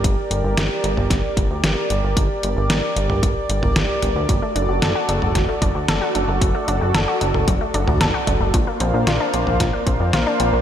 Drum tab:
HH |x-x-x-x-x-x-x-x-|x-x-x-x-x-x-x-x-|x-x-x-x-x-x-x-x-|x-x-x-x-x-x-x-x-|
SD |----o---o---o---|----o-------o---|----o---o---o---|----o-------o---|
T2 |-------o--------|-------o---o--o-|-------o--------|-------o---o--o-|
BD |o-------o-o-----|o-------o-------|o-------o-o-----|o-------o-------|

HH |x-x-x-x-x-x-x-x-|
SD |----o---o---o---|
T2 |-------o--------|
BD |o-------o-o-----|